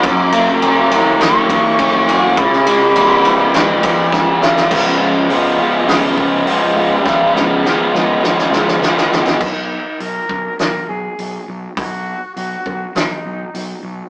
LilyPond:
<<
  \new Staff \with { instrumentName = "Flute" } { \time 4/4 \key b \major \tempo 4 = 102 ais''4 ais''8 ais''8 cis'''2 | b''2. r4 | r1 | r1 |
dis'4 ais'4 ais'8 gis'4 r8 | fis'4 fis'4 dis'4. r8 | }
  \new Staff \with { instrumentName = "Overdriven electric guitar" } { \time 4/4 \key b \major fis,8 ais8 cis'8 e8 ais8 e8 cis'8 fis'8 | cis8 gis8 b8 eis8 gis8 eis8 b8 eis'8 | <cis eis gis b eis'>8 <gis b eis'>8 <eis gis b eis'>8 <gis b eis'>8 <cis eis gis b eis'>8 <gis b eis'>8 <eis gis b eis'>8 <gis b eis'>8 | <cis eis gis b eis'>8 <gis b eis'>8 <eis gis b eis'>8 <gis b eis'>8 <cis eis gis b eis'>8 <gis b eis'>8 <eis gis b eis'>8 <gis b eis'>8 |
r1 | r1 | }
  \new Staff \with { instrumentName = "Fingered electric bass" } { \clef bass \time 4/4 \key b \major fis,,8 fis,,8 fis,,8 fis,,8 fis,,4 fis,,8 fis,8 | cis,8 cis,8 cis,8 cis,8 cis,4 cis,8 cis8 | cis,8 cis,8 cis8 cis,8 cis,8 cis,8 cis,8 cis,8 | cis,8 cis,8 cis8 cis,8 cis,8 cis,8 cis,8 cis,8 |
b,,4 b,,8 b,,8 b,,8 b,,8 b,,8 b,,8 | b,,4 b,,8 b,,8 b,,8 b,,8 b,,8 b,,8 | }
  \new DrumStaff \with { instrumentName = "Drums" } \drummode { \time 4/4 <bd cymr>8 cymr8 cymr8 cymr8 <cymr sn>8 <bd cymr>8 <bd cymr>8 cymr8 | <bd cymr>16 sn16 cymr8 cymr8 cymr8 <cymr sn>8 <bd cymr>8 <bd sn>8 sn16 sn16 | <cymc bd>4 hho4 <hho sn>8 bd8 hho4 | <bd sn>8 sn8 sn8 sn8 sn16 sn16 sn16 sn16 sn16 sn16 sn16 sn16 |
<cymc bd>4 hho8 bd8 <hho sn>4 hho4 | <hho bd>4 hho8 bd8 <hho sn>4 hho4 | }
>>